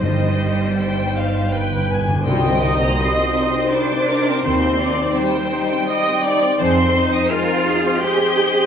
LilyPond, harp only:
\new Staff \with { instrumentName = "Harp" } { \time 3/4 \key c \minor \tempo 4 = 83 <g, c' ees'>16 g16 c'16 ees'16 c''16 ees'16 ees''16 c'''16 g,16 d16 b16 d'16 | \tuplet 3/2 { c8 g8 c'8 ees'8 c''8 ees'8 c''8 ees'8 c'8 } | \tuplet 3/2 { ees4 ees'8 c''8 ees'8 ees''8 c''8 ees'8 c'8 } | \tuplet 3/2 { f8 c'8 ees'8 aes'8 c''8 ees''8 c''8 aes'8 ees'8 } | }